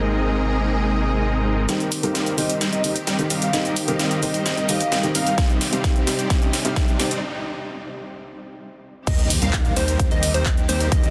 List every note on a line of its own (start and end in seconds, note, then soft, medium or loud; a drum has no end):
0.00 1.66 G#1 medium
0.00 1.65 G#2 medium
0.00 1.67 C3 medium
0.00 1.66 G#3 medium
0.00 1.66 A#3 medium
0.00 1.67 A#3 medium
0.00 1.66 C4 medium
0.00 1.66 D#4 medium
0.00 1.67 G#4 medium
0.00 1.66 A#4 medium
0.00 1.66 D#5 medium
1.68 2.00 D#3 medium
1.68 7.19 D#3 medium
1.68 1.92 G3 medium
1.68 2.00 A#3 medium
1.68 3.52 C4 medium
1.68 1.92 C4 medium
1.68 2.01 C4 medium
1.68 1.92 D#4 medium
1.68 2.01 D#4 medium
1.68 5.34 G4 medium
1.68 2.01 G4 medium
1.68 1.92 D#5 medium
1.68 snare soft
1.68 closed hi-hat medium
1.68 riser medium
1.68 shaker soft
1.80 closed hi-hat soft
1.80 shaker soft
1.92 open hi-hat loud
1.92 shaker medium
2.03 2.35 D#3 medium
2.03 2.35 G3 medium
2.03 2.35 A#3 medium
2.03 2.35 C4 medium
2.03 2.35 D#4 medium
2.03 2.35 G4 medium
2.03 2.35 A#4 medium
2.03 2.35 F5 medium
2.03 closed hi-hat medium
2.03 shaker soft
2.15 snare soft
2.15 closed hi-hat soft
2.15 shaker soft
2.26 closed hi-hat soft
2.26 shaker soft
2.37 2.47 D#3 medium
2.37 2.70 G3 medium
2.37 2.47 A#3 medium
2.37 2.47 C4 medium
2.37 2.70 C4 medium
2.37 2.70 D#4 medium
2.37 2.48 D#4 medium
2.37 2.48 G4 loud
2.37 2.70 A#4 medium
2.37 2.70 C5 medium
2.37 2.54 D#5 medium
2.37 open hi-hat medium
2.37 shaker medium
2.50 closed hi-hat medium
2.50 shaker soft
2.61 snare medium
2.61 closed hi-hat medium
2.61 shaker soft
2.72 2.96 G3 medium
2.72 2.96 C4 medium
2.72 2.96 D#4 medium
2.72 2.96 A#4 medium
2.72 2.89 D#5 medium
2.72 2.96 D#5 medium
2.72 closed hi-hat soft
2.72 shaker soft
2.84 2.93 D#3 medium
2.84 2.93 A#3 medium
2.84 2.94 C4 medium
2.84 2.94 D#4 medium
2.84 2.94 G4 medium
2.84 open hi-hat loud
2.84 shaker medium
2.96 closed hi-hat medium
2.96 shaker soft
3.07 3.22 G3 medium
3.07 3.22 C4 medium
3.07 3.22 D#4 medium
3.07 3.22 A#4 medium
3.07 3.22 G5 medium
3.07 snare soft
3.07 closed hi-hat soft
3.07 shaker soft
3.18 3.24 D#3 medium
3.18 3.24 A#3 medium
3.18 3.25 C4 medium
3.18 3.25 D#4 medium
3.18 3.25 G4 medium
3.18 closed hi-hat soft
3.18 shaker soft
3.30 3.51 G3 medium
3.30 3.51 C4 medium
3.30 3.51 D#4 medium
3.30 3.51 A#4 medium
3.30 3.51 F5 loud
3.30 open hi-hat medium
3.30 shaker medium
3.42 3.51 F5 medium
3.42 closed hi-hat medium
3.42 shaker soft
3.52 3.85 D#3 medium
3.52 3.76 G3 medium
3.52 3.85 A#3 medium
3.52 3.85 C4 medium
3.52 3.76 C4 medium
3.52 3.76 D#4 medium
3.52 3.85 D#4 medium
3.52 3.85 G4 medium
3.52 3.76 A#4 medium
3.52 3.69 D#5 medium
3.52 3.76 D#5 medium
3.52 5.36 D#5 medium
3.52 snare medium
3.52 closed hi-hat soft
3.52 shaker soft
3.65 closed hi-hat soft
3.65 shaker soft
3.76 open hi-hat loud
3.76 shaker medium
3.87 4.19 D#3 medium
3.87 4.20 G3 medium
3.87 4.20 A#3 medium
3.87 4.20 C4 medium
3.87 4.20 D#4 medium
3.87 4.20 G4 loud
3.87 4.20 A#4 medium
3.87 4.20 F5 medium
3.87 closed hi-hat medium
3.87 shaker soft
3.99 snare medium
3.99 closed hi-hat medium
3.99 shaker soft
4.11 closed hi-hat soft
4.11 shaker soft
4.22 4.32 D#3 medium
4.22 4.54 G3 medium
4.22 4.32 A#3 medium
4.22 4.32 C4 medium
4.22 4.54 C4 medium
4.22 4.54 D#4 medium
4.22 4.32 D#4 medium
4.22 4.32 G4 loud
4.22 4.54 A#4 medium
4.22 4.54 C5 medium
4.22 4.67 D#5 medium
4.22 open hi-hat medium
4.22 shaker medium
4.34 closed hi-hat medium
4.34 shaker soft
4.46 snare medium
4.46 closed hi-hat medium
4.46 shaker soft
4.57 4.80 G3 medium
4.57 4.80 C4 medium
4.57 4.80 D#4 medium
4.57 4.80 A#4 medium
4.57 4.80 D#5 medium
4.57 closed hi-hat soft
4.57 shaker soft
4.68 4.78 D#3 medium
4.68 4.78 A#3 medium
4.68 4.78 C4 medium
4.68 4.78 D#4 medium
4.68 4.79 G4 medium
4.68 4.76 F5 medium
4.68 open hi-hat loud
4.68 shaker medium
4.80 4.88 F5 medium
4.80 closed hi-hat medium
4.80 shaker soft
4.92 5.06 G3 medium
4.92 5.06 C4 medium
4.92 5.06 D#4 medium
4.92 5.06 A#4 medium
4.92 5.06 G5 medium
4.92 snare medium
4.92 closed hi-hat soft
4.92 shaker soft
5.03 5.09 D#3 medium
5.03 5.09 A#3 medium
5.03 5.09 C4 medium
5.03 5.09 D#4 medium
5.03 5.09 G4 medium
5.03 closed hi-hat soft
5.03 shaker soft
5.15 5.35 G3 loud
5.15 5.35 C4 medium
5.15 5.35 D#4 medium
5.15 5.35 A#4 medium
5.15 5.35 F5 loud
5.15 5.43 F5 medium
5.15 open hi-hat medium
5.15 shaker medium
5.27 closed hi-hat soft
5.27 shaker soft
5.37 5.69 C3 medium
5.37 5.70 G3 medium
5.37 5.70 C4 medium
5.37 7.21 C4 medium
5.37 5.70 D#4 medium
5.37 7.21 G4 medium
5.37 5.70 G4 medium
5.37 kick loud
5.37 snare medium
5.37 closed hi-hat medium
5.37 shaker soft
5.50 closed hi-hat soft
5.50 shaker soft
5.61 snare medium
5.61 open hi-hat loud
5.61 shaker medium
5.72 6.04 C3 medium
5.72 6.04 G3 medium
5.72 6.05 G3 medium
5.72 6.04 C4 medium
5.72 6.05 D#4 medium
5.72 6.05 G4 medium
5.72 6.05 C5 medium
5.72 6.04 F5 medium
5.72 closed hi-hat soft
5.72 shaker soft
5.84 kick loud
5.84 snare medium
5.84 closed hi-hat medium
5.84 shaker soft
5.96 closed hi-hat soft
5.96 shaker soft
6.07 6.16 C3 medium
6.07 6.16 G3 medium
6.07 6.29 G3 medium
6.07 6.17 C4 medium
6.07 6.28 C4 medium
6.07 6.29 D#4 medium
6.07 6.17 D#4 medium
6.07 6.17 G4 loud
6.07 6.29 C5 medium
6.07 6.28 D5 medium
6.07 snare medium
6.07 open hi-hat loud
6.07 shaker medium
6.19 closed hi-hat soft
6.19 shaker soft
6.30 6.62 C3 medium
6.30 6.62 G3 medium
6.30 6.62 C4 medium
6.30 6.62 D#4 medium
6.30 6.63 G4 medium
6.30 kick loud
6.30 snare medium
6.30 closed hi-hat medium
6.30 shaker soft
6.42 closed hi-hat soft
6.42 shaker soft
6.53 snare medium
6.53 open hi-hat loud
6.53 shaker medium
6.64 6.96 C3 medium
6.64 6.97 G3 medium
6.64 6.97 C4 medium
6.64 6.97 D#4 medium
6.64 6.97 G4 loud
6.64 6.97 C5 medium
6.64 6.97 F5 medium
6.64 closed hi-hat medium
6.64 shaker soft
6.76 kick loud
6.76 snare medium
6.76 closed hi-hat soft
6.76 shaker soft
6.88 closed hi-hat soft
6.88 shaker soft
6.99 7.09 C3 medium
6.99 7.09 G3 medium
6.99 7.21 G3 medium
6.99 7.09 C4 medium
6.99 7.21 C4 medium
6.99 7.21 D#4 medium
6.99 7.09 D#4 medium
6.99 7.09 G4 loud
6.99 7.21 C5 medium
6.99 7.21 D5 loud
6.99 snare medium
6.99 open hi-hat loud
6.99 shaker medium
7.11 closed hi-hat medium
7.11 shaker soft
9.07 9.39 D#2 loud
9.07 11.10 D#3 medium
9.07 9.30 G3 medium
9.07 9.30 C4 medium
9.07 9.30 D#4 medium
9.07 11.10 G4 medium
9.07 9.30 A#4 medium
9.07 9.30 D#5 medium
9.07 kick loud
9.07 closed hi-hat medium
9.07 crash loud
9.07 impact medium
9.07 shaker soft
9.19 closed hi-hat soft
9.19 shaker soft
9.30 open hi-hat loud
9.30 shaker medium
9.42 9.74 D#2 medium
9.42 9.74 G3 medium
9.42 9.74 C4 medium
9.42 9.74 D#4 medium
9.42 9.74 A#4 medium
9.42 9.74 F5 medium
9.42 closed hi-hat medium
9.42 shaker soft
9.53 kick loud
9.53 clap loud
9.53 closed hi-hat medium
9.53 shaker soft
9.65 closed hi-hat soft
9.65 shaker soft
9.76 10.09 D#2 loud
9.76 10.08 G3 medium
9.76 10.08 C4 medium
9.76 10.08 D#4 medium
9.76 10.08 A#4 medium
9.76 10.08 C5 medium
9.76 10.08 C5 loud
9.76 open hi-hat medium
9.76 shaker medium
9.88 closed hi-hat medium
9.88 shaker soft
10.00 kick loud
10.00 closed hi-hat medium
10.00 shaker soft
10.11 10.32 D#2 medium
10.11 10.32 G3 medium
10.11 10.32 C4 medium
10.11 10.32 D#4 medium
10.11 10.32 A#4 medium
10.11 10.32 D#5 medium
10.11 closed hi-hat soft
10.11 shaker soft
10.23 open hi-hat loud
10.23 shaker medium
10.34 10.66 D#2 loud
10.34 10.49 G3 medium
10.34 10.49 C4 medium
10.34 10.49 D#4 medium
10.34 10.49 A#4 medium
10.34 10.48 C5 loud
10.34 10.49 C5 medium
10.34 closed hi-hat medium
10.34 shaker soft
10.46 kick loud
10.46 clap loud
10.46 closed hi-hat medium
10.46 shaker soft
10.57 closed hi-hat soft
10.57 shaker soft
10.69 10.90 D#2 loud
10.69 10.89 G3 loud
10.69 10.89 C4 medium
10.69 10.89 D#4 medium
10.69 10.89 A#4 medium
10.69 10.89 C5 loud
10.69 open hi-hat loud
10.69 shaker medium
10.80 closed hi-hat medium
10.80 shaker soft
10.92 11.10 D#5 medium
10.92 kick loud
10.92 closed hi-hat medium
10.92 shaker soft
11.04 closed hi-hat soft
11.04 shaker soft